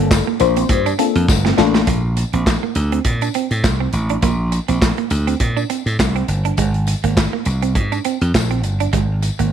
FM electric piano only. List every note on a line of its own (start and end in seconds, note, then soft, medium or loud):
0.00 0.20 A#3 loud
0.00 0.21 D4 medium
0.00 0.21 F4 medium
0.00 0.21 A4 loud
0.40 0.79 A#3 medium
0.40 0.79 D4 medium
0.40 0.80 F4 medium
0.40 0.80 C5 loud
0.99 1.38 A#3 medium
0.99 1.38 D4 medium
0.99 1.38 F4 medium
0.99 1.38 A4 loud
1.57 1.87 A#3 loud
1.57 1.87 D4 medium
1.57 1.87 F4 medium
1.57 1.87 A4 loud